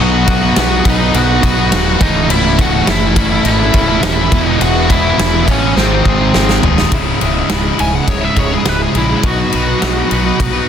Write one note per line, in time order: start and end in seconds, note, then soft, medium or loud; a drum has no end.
0.00 0.50 B1 loud
0.00 0.55 B2 medium
0.00 1.99 B2 medium
0.00 0.56 F#3 loud
0.00 2.00 F#3 loud
0.00 0.26 B3 loud
0.00 2.01 B3 loud
0.00 0.27 D#4 loud
0.00 0.82 F#4 medium
0.00 0.28 F#4 loud
0.00 0.29 B4 loud
0.00 0.89 F#5 loud
0.27 0.44 B3 medium
0.27 0.43 D#4 medium
0.27 0.42 F#4 medium
0.27 0.40 B4 medium
0.27 kick medium
0.27 ride medium
0.41 0.56 B3 medium
0.41 0.57 D#4 medium
0.41 0.58 F#4 medium
0.41 0.58 B4 medium
0.56 0.82 B1 medium
0.56 1.00 B2 medium
0.56 1.00 F#3 medium
0.56 0.72 B3 medium
0.56 0.71 D#4 loud
0.56 0.70 F#4 medium
0.56 0.69 B4 loud
0.56 snare loud
0.56 ride loud
0.70 0.83 B3 medium
0.70 0.84 D#4 medium
0.70 0.85 F#4 medium
0.70 0.86 B4 medium
0.84 1.11 B1 medium
0.84 1.01 B3 medium
0.84 1.00 D#4 medium
0.84 1.14 D#4 medium
0.84 0.99 F#4 medium
0.84 0.98 B4 medium
0.84 kick medium
0.84 ride medium
0.89 1.17 D#5 medium
0.99 1.40 B3 medium
0.99 1.42 D#4 medium
0.99 1.43 F#4 medium
0.99 1.44 B4 medium
1.14 1.40 B1 loud
1.14 1.97 F#4 medium
1.14 2.04 F#5 loud
1.14 ride loud
1.27 1.59 B3 medium
1.27 1.57 D#4 medium
1.27 1.56 F#4 medium
1.27 1.55 B4 medium
1.42 1.69 B1 medium
1.42 1.59 B3 medium
1.42 1.58 D#4 medium
1.42 1.56 F#4 medium
1.42 1.55 B4 medium
1.42 kick medium
1.42 ride medium
1.56 1.72 B3 medium
1.56 1.72 D#4 medium
1.56 1.73 F#4 medium
1.56 1.73 B4 medium
1.71 1.98 D#1 medium
1.71 1.99 B2 loud
1.71 1.99 F#3 medium
1.71 2.00 B3 medium
1.71 2.00 D#4 loud
1.71 2.00 F#4 loud
1.71 2.00 B4 loud
1.71 snare loud
1.71 ride loud
2.00 2.26 C#1 medium
2.00 2.28 A2 loud
2.00 2.28 E3 loud
2.00 2.17 A3 loud
2.00 2.16 C#4 loud
2.00 2.28 D#4 medium
2.00 2.15 E4 loud
2.00 2.14 A4 loud
2.00 2.31 D#5 medium
2.00 kick loud
2.00 ride medium
2.15 2.29 A3 medium
2.15 2.30 C#4 medium
2.15 2.31 E4 medium
2.15 2.31 A4 medium
2.29 2.81 C#1 loud
2.29 2.85 A2 loud
2.29 2.86 E3 loud
2.29 2.57 A3 loud
2.29 2.59 C#4 loud
2.29 2.57 E4 medium
2.29 2.59 E4 loud
2.29 2.60 A4 loud
2.29 2.60 E5 medium
2.29 ride loud
2.58 2.75 A3 medium
2.58 2.74 C#4 medium
2.58 2.73 E4 medium
2.58 2.87 F#4 medium
2.58 2.71 A4 medium
2.58 2.90 F#5 loud
2.58 kick medium
2.58 ride medium
2.72 2.87 A3 medium
2.72 2.87 C#4 medium
2.72 2.88 E4 medium
2.72 2.88 A4 medium
2.87 3.39 F#1 medium
2.87 3.30 A2 medium
2.87 3.31 E3 medium
2.87 3.03 A3 medium
2.87 3.01 C#4 medium
2.87 3.01 E4 loud
2.87 3.42 E4 medium
2.87 2.99 A4 loud
2.87 3.45 E5 medium
2.87 snare loud
2.87 ride loud
3.00 3.14 A3 medium
3.00 3.15 C#4 medium
3.00 3.16 E4 medium
3.00 3.17 A4 medium
3.15 3.31 A3 medium
3.15 3.30 C#4 medium
3.15 3.30 E4 medium
3.15 3.28 A4 medium
3.15 kick medium
3.15 ride medium
3.29 3.71 A3 medium
3.29 3.73 C#4 medium
3.29 3.74 E4 medium
3.29 3.75 A4 medium
3.45 3.71 G#1 loud
3.45 4.00 E4 medium
3.45 4.03 E5 loud
3.45 ride medium
3.59 3.90 A3 medium
3.59 3.89 C#4 medium
3.59 3.88 E4 medium
3.59 3.86 A4 medium
3.72 4.00 C#1 medium
3.72 3.89 A3 medium
3.72 3.88 C#4 medium
3.72 3.87 E4 medium
3.72 3.86 A4 medium
3.72 kick medium
3.72 ride medium
3.87 4.02 A3 medium
3.87 4.02 C#4 medium
3.87 4.03 E4 medium
3.87 4.04 A4 medium
4.01 4.28 D#1 medium
4.01 4.29 A2 loud
4.01 4.30 E3 medium
4.01 4.30 A3 loud
4.01 4.30 C#4 loud
4.01 4.31 E4 loud
4.01 4.58 E4 medium
4.01 4.31 A4 loud
4.01 4.47 E5 medium
4.01 snare loud
4.01 ride loud
4.30 4.57 E1 medium
4.30 4.58 E2 loud
4.30 4.59 B2 loud
4.30 4.48 E3 medium
4.30 4.47 G#3 loud
4.30 4.46 B3 medium
4.30 4.44 E4 loud
4.30 kick loud
4.30 ride medium
4.46 4.60 E3 medium
4.46 4.61 G#3 medium
4.46 4.61 B3 medium
4.46 4.62 E4 medium
4.46 4.63 D#5 medium
4.59 5.12 E1 medium
4.59 5.16 E2 loud
4.59 5.16 B2 loud
4.59 4.87 E3 medium
4.59 4.89 G#3 loud
4.59 4.90 B3 loud
4.59 4.91 E4 loud
4.59 4.88 F#4 medium
4.59 4.91 F#5 loud
4.59 ride medium
4.89 5.05 E3 medium
4.89 5.04 G#3 medium
4.89 5.03 B3 medium
4.89 5.44 E4 medium
4.89 5.02 E4 medium
4.89 5.49 E5 loud
4.89 kick medium
4.89 ride medium
5.03 5.17 E3 medium
5.03 5.18 G#3 medium
5.03 5.18 B3 medium
5.03 5.19 E4 medium
5.17 5.44 E1 medium
5.17 5.61 E2 medium
5.17 5.61 B2 medium
5.17 5.33 E3 medium
5.17 5.32 G#3 medium
5.17 5.31 B3 loud
5.17 5.30 E4 loud
5.17 snare loud
5.17 ride loud
5.31 5.45 E3 medium
5.31 5.46 G#3 medium
5.31 5.47 B3 medium
5.31 5.48 E4 medium
5.46 5.73 A1 medium
5.46 5.63 E3 medium
5.46 5.62 G#3 medium
5.46 5.61 B3 medium
5.46 5.59 E4 medium
5.46 5.76 C#5 medium
5.46 kick medium
5.46 ride medium
5.50 5.76 C#4 medium
5.60 5.75 E3 medium
5.60 5.75 G#3 medium
5.60 5.75 B3 medium
5.60 5.74 E4 medium
5.74 6.02 G#1 medium
5.74 6.31 G#2 medium
5.74 6.32 D#3 medium
5.74 6.02 G#3 medium
5.74 6.03 C4 loud
5.74 6.60 C4 medium
5.74 6.04 D#4 loud
5.74 6.05 G#4 loud
5.74 6.59 C5 medium
5.74 snare medium
5.80 6.92 G#3 loud
5.89 6.21 G#3 medium
5.89 6.20 C4 medium
5.89 6.19 D#4 medium
5.89 6.17 G#4 medium
6.03 6.31 G#1 medium
6.03 6.20 G#3 medium
6.03 6.19 C4 medium
6.03 6.18 D#4 medium
6.03 6.17 G#4 medium
6.03 kick medium
6.18 6.33 G#3 medium
6.18 6.33 C4 medium
6.18 6.34 D#4 medium
6.18 6.34 G#4 medium
6.32 6.60 G#1 medium
6.32 6.89 G#2 medium
6.32 6.90 D#3 medium
6.32 6.61 G#3 medium
6.32 6.62 C4 loud
6.32 6.64 D#4 medium
6.32 6.64 G#4 loud
6.32 snare medium
6.49 snare medium
6.62 6.89 D#1 loud
6.62 6.78 G#3 medium
6.62 6.78 C4 medium
6.62 6.76 D#4 medium
6.62 6.75 G#4 medium
6.62 floor tom loud
6.76 6.91 G#3 medium
6.76 6.91 C4 medium
6.76 6.90 D#4 medium
6.76 6.90 G#4 medium
6.76 snare medium
6.91 7.11 C#1 loud
6.91 7.47 C#2 medium
6.91 7.18 G#2 medium
6.91 7.19 C#3 medium
6.91 7.20 G#3 loud
6.91 7.21 E4 loud
6.91 kick loud
6.91 ride medium
7.19 7.40 C#1 medium
7.19 7.48 G#2 medium
7.19 7.48 C#3 medium
7.19 7.50 G#3 medium
7.19 7.50 E4 medium
7.19 ride medium
7.35 7.49 C#3 medium
7.35 7.50 G#3 medium
7.35 7.50 E4 medium
7.48 7.69 C#1 medium
7.48 8.07 C#2 medium
7.48 7.76 G#2 loud
7.48 7.77 C#3 medium
7.48 7.78 G#3 medium
7.48 7.79 E4 loud
7.48 snare loud
7.48 ride medium
7.77 7.98 C#1 medium
7.77 8.22 G#2 medium
7.77 7.93 C#3 medium
7.77 7.92 G#3 medium
7.77 7.90 E4 medium
7.77 7.95 G#5 medium
7.77 ride medium
7.91 8.23 C#3 medium
7.91 8.22 G#3 medium
7.91 8.19 E4 medium
7.91 8.08 F#5 medium
7.91 muted distorted electric guitar stroke medium
8.07 8.27 C#1 medium
8.07 8.24 C#5 medium
8.07 kick medium
8.07 ride medium
8.21 8.36 C#3 medium
8.21 8.37 G#3 medium
8.21 8.38 E4 medium
8.21 8.39 E5 medium
8.36 8.56 C#1 medium
8.36 8.65 G#2 medium
8.36 8.52 C#3 medium
8.36 8.51 G#3 medium
8.36 8.49 E4 medium
8.36 8.52 C#5 medium
8.36 kick medium
8.36 ride medium
8.50 8.65 C#3 medium
8.50 8.66 G#3 medium
8.50 8.67 E4 medium
8.50 8.69 G#4 medium
8.50 muted distorted electric guitar stroke soft
8.65 8.85 C#1 medium
8.65 9.09 C#2 medium
8.65 8.92 G#2 medium
8.65 8.82 C#3 medium
8.65 8.80 G#3 medium
8.65 8.78 E4 medium
8.65 snare loud
8.65 ride medium
8.69 8.82 B4 medium
8.79 8.94 C#3 medium
8.79 8.95 G#3 medium
8.79 8.96 E4 medium
8.79 8.96 G#4 medium
8.93 9.14 A#1 medium
8.93 9.21 G#2 medium
8.93 9.10 C#3 medium
8.93 9.08 G#3 medium
8.93 9.06 E4 medium
8.93 ride medium
8.97 9.24 E4 medium
9.08 9.23 C#3 medium
9.08 9.22 G#3 medium
9.08 9.21 E4 medium
9.22 9.42 B1 medium
9.22 9.79 B2 medium
9.22 9.80 F#3 medium
9.22 9.51 B3 medium
9.22 9.52 D#4 loud
9.22 9.53 F#4 medium
9.22 10.69 F#4 medium
9.22 9.55 B4 loud
9.22 kick loud
9.22 ride medium
9.52 9.73 B1 medium
9.52 9.82 B3 medium
9.52 9.82 D#4 medium
9.52 9.82 F#4 medium
9.52 9.83 B4 medium
9.52 ride medium
9.67 9.81 B3 medium
9.67 9.81 D#4 medium
9.67 9.81 F#4 medium
9.67 9.83 B4 medium
9.80 10.01 B1 medium
9.80 10.39 B2 medium
9.80 10.40 F#3 loud
9.80 10.09 B3 medium
9.80 10.10 D#4 medium
9.80 10.11 F#4 loud
9.80 10.13 B4 loud
9.80 snare loud
9.80 ride medium
10.09 10.30 B1 medium
10.09 10.26 B3 medium
10.09 10.25 D#4 medium
10.09 10.24 F#4 medium
10.09 10.23 B4 medium
10.09 ride medium
10.24 10.55 B3 medium
10.24 10.54 D#4 medium
10.24 10.53 F#4 medium
10.24 10.52 B4 medium
10.24 muted distorted electric guitar stroke soft
10.39 10.59 B1 medium
10.39 kick medium
10.39 ride medium
10.53 10.66 B3 medium
10.53 10.67 D#4 medium
10.53 10.69 F#4 medium
10.53 10.69 B4 medium